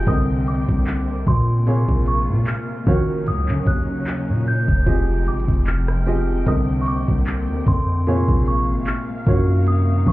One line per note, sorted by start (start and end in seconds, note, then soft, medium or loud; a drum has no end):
0.00 1.64 C3 medium
0.00 1.64 G5 medium
0.07 0.66 C2 loud
0.07 1.43 C3 medium
0.07 1.44 D3 medium
0.07 1.65 D3 medium
0.07 4.83 A#3 medium
0.07 1.44 C4 medium
0.07 1.66 C4 medium
0.07 1.44 A#4 medium
0.07 1.44 D#5 medium
0.07 0.22 D#6 loud
0.07 kick loud
0.07 closed hi-hat medium
0.47 1.30 D6 medium
0.47 closed hi-hat medium
0.69 1.25 C2 loud
0.69 kick loud
0.87 clap loud
0.87 closed hi-hat medium
1.27 1.86 A#2 loud
1.27 2.10 C6 loud
1.27 kick medium
1.27 closed hi-hat medium
1.66 2.70 A#2 medium
1.66 2.86 C3 medium
1.66 2.70 C3 medium
1.66 2.86 G#3 medium
1.66 2.70 A#3 medium
1.66 2.86 F4 medium
1.66 2.70 G#4 medium
1.66 2.71 C#5 medium
1.66 closed hi-hat medium
1.89 2.30 A#1 loud
1.89 kick medium
2.06 2.22 C#6 medium
2.06 closed hi-hat medium
2.29 2.46 A#2 loud
2.47 3.30 F6 loud
2.47 clap loud
2.47 closed hi-hat medium
2.87 4.85 C#3 medium
2.87 3.29 D#3 loud
2.87 4.24 D#3 medium
2.87 4.85 F#3 medium
2.87 4.24 A#3 medium
2.87 4.85 C#4 medium
2.87 6.43 D#4 medium
2.87 4.24 F4 medium
2.87 4.24 F#4 medium
2.87 4.24 C#5 medium
2.87 kick loud
2.87 closed hi-hat medium
3.27 3.50 C#2 loud
3.27 3.69 D#6 loud
3.27 closed hi-hat medium
3.48 3.66 D#3 loud
3.48 clap medium
3.67 4.30 D#2 loud
3.67 4.50 F#6 medium
3.67 kick medium
3.67 closed hi-hat medium
4.07 clap loud
4.07 closed hi-hat medium
4.29 4.67 A#2 loud
4.47 5.23 G6 loud
4.47 closed hi-hat medium
4.68 5.28 F1 loud
4.68 kick loud
4.86 8.03 C3 medium
4.86 6.45 F3 medium
4.86 5.90 F3 medium
4.86 6.45 G#3 medium
4.86 5.90 C4 medium
4.86 5.90 G4 medium
4.86 5.90 G#4 medium
4.86 5.91 D#5 medium
4.86 8.03 G5 medium
4.86 kick loud
4.86 closed hi-hat medium
5.27 5.47 G#1 loud
5.27 5.65 D6 medium
5.27 closed hi-hat medium
5.40 closed hi-hat medium
5.48 6.43 F1 medium
5.48 kick medium
5.53 closed hi-hat medium
5.67 6.50 F6 loud
5.67 clap loud
5.67 closed hi-hat medium
5.88 cross-stick loud
6.06 6.41 F3 medium
6.06 6.41 C4 medium
6.06 6.41 G4 medium
6.06 6.42 G#4 medium
6.06 6.42 D#5 medium
6.06 open hi-hat medium
6.46 7.06 C2 loud
6.46 7.83 C3 medium
6.46 8.05 D3 medium
6.46 7.84 D3 medium
6.46 8.05 A#3 medium
6.46 7.83 C4 medium
6.46 8.05 C4 medium
6.46 7.84 A#4 medium
6.46 7.84 D#5 medium
6.46 6.62 D#6 loud
6.46 kick loud
6.46 closed hi-hat medium
6.81 6.87 C#6 medium
6.87 7.70 D6 medium
6.87 closed hi-hat medium
7.08 7.50 C2 loud
7.08 kick loud
7.26 clap loud
7.26 closed hi-hat medium
7.48 7.66 D#2 loud
7.67 8.26 F2 loud
7.67 8.50 C6 medium
7.67 kick medium
7.67 closed hi-hat medium
8.07 9.10 A#2 medium
8.07 10.12 C3 medium
8.07 9.10 C3 medium
8.07 9.26 G#3 medium
8.07 9.10 A#3 medium
8.07 10.12 A#3 medium
8.07 9.11 G#4 medium
8.07 9.11 C#5 medium
8.07 10.12 F5 medium
8.07 closed hi-hat medium
8.28 8.70 A#1 loud
8.28 kick medium
8.46 8.89 C#6 medium
8.46 closed hi-hat medium
8.69 8.86 G#1 loud
8.87 9.63 F6 loud
8.87 clap loud
8.87 closed hi-hat medium
9.27 10.04 F#2 loud
9.27 10.12 D#3 medium
9.27 10.12 F#3 medium
9.27 10.12 A#3 medium
9.27 10.12 D#4 medium
9.27 10.12 F4 medium
9.27 10.12 F#4 medium
9.27 10.12 C#5 medium
9.27 kick loud
9.27 closed hi-hat medium
9.67 10.08 D#6 loud
9.67 closed hi-hat medium
10.07 10.12 D#3 loud
10.07 10.12 C#6 medium
10.07 kick medium
10.07 closed hi-hat medium